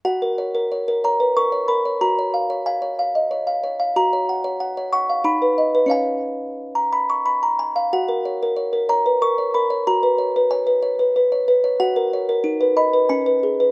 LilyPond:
\new Staff \with { instrumentName = "Music box" } { \time 3/4 \key fis \major \tempo 4 = 92 << { fis''4. ais''8 cis'''8 b''8 | ais''4 gis''4. r8 | ais''4. cis'''8 b''4 | gis''4~ gis''16 ais''16 b''16 cis'''16 b''16 ais''16 gis''16 eis''16 |
fis''4. ais''8 cis'''8 b''8 | ais''4 gis''4. r8 | fis''4. b''8 gis''4 | } \\ { fis'16 ais'16 cis''16 ais'16 cis''16 ais'16 cis''16 b'16 ais'16 cis''16 ais'16 cis''16 | fis'16 cis''16 eis''16 cis''16 eis''16 cis''16 eis''16 dis''16 cis''16 eis''16 cis''16 eis''16 | fis'16 cis''16 fis''16 cis''16 fis''16 cis''16 fis''16 eis''16 dis'16 b'16 dis''16 b'16 | <cis' cis'' eis''>2. |
fis'16 ais'16 cis''16 ais'16 cis''16 ais'16 cis''16 b'16 ais'16 cis''16 ais'16 cis''16 | fis'16 b'16 cis''16 b'16 cis''16 b'16 cis''16 b'16 b'16 cis''16 b'16 cis''16 | fis'16 ais'16 cis''16 ais'16 dis'16 b'16 dis''16 b'16 cis'16 b'16 gis'16 b'16 | } >> }